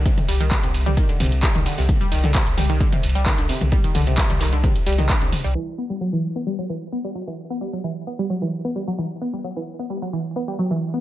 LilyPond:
<<
  \new Staff \with { instrumentName = "Synth arpeggio sound" } { \clef bass \time 4/4 \key e \minor \tempo 4 = 131 c16 r16 g16 ees16 d16 c16 r16 g16 ees16 d16 c16 r16 g16 ees16 d16 c16 | r16 g16 ees16 d16 c16 r16 g16 ees16 d16 c16 r16 g16 ees16 d16 c16 r16 | g16 ees16 d16 c16 r16 g16 ees16 d16 c16 r16 g16 ees16 d16 c16 r16 g16 | e16 r16 b16 g16 fis16 e16 r16 b16 g16 fis16 e16 r16 b16 g16 fis16 e16 |
r16 b16 g16 fis16 e16 r16 b16 g16 fis16 e16 r16 b16 g16 fis16 e16 r16 | b16 g16 fis16 e16 r16 b16 g16 fis16 e16 r16 b16 g16 fis16 e16 r16 b16 | }
  \new Staff \with { instrumentName = "Sub bass" } { \clef bass \time 4/4 \key e \minor r8 c,16 c,16 r16 c,16 c,16 c,16 r8 c,16 c,16 r16 c,16 r16 c,16 | r8 c,16 c,16 r16 c,16 c,16 c,16 r8 c,16 c,16 r16 c,16 r16 c,16 | r8 c,16 c,16 r16 c,16 c,16 c,16 r8 c,16 c,16 r16 c,16 r16 c,16 | r1 |
r1 | r1 | }
  \new DrumStaff \with { instrumentName = "Drums" } \drummode { \time 4/4 <hh bd>16 <hh toml>16 <hho cymr>16 hh16 <hc hh bd toml>16 hh16 <hho cymr>16 <hh toml>16 <hh bd>16 hh16 <hho cymr toml>32 hh32 hh16 <hc hh bd>16 <hh toml>16 <hho cymr>16 hho16 | <hh bd toml>16 hh16 <hho cymr>16 <hh toml>16 <hc hh bd>16 hh16 <hho cymr toml>16 hh16 <hh bd>16 <hh toml>16 <hho cymr>32 hh32 hh16 <hc hh bd toml>16 hh16 <hho cymr>16 <hh toml>16 | <hh bd>16 hh16 <hho cymr toml>16 hh16 <hc hh bd>16 <hh toml>16 <hc hho cymr>16 hh16 <hh bd toml>16 hh16 <hho cymr>32 hh32 <hh toml>16 <hc hh bd>16 hh16 <hho cymr toml>16 hho16 | cymc4 r4 r4 r4 |
r4 r4 r4 r4 | r4 r4 r4 r4 | }
>>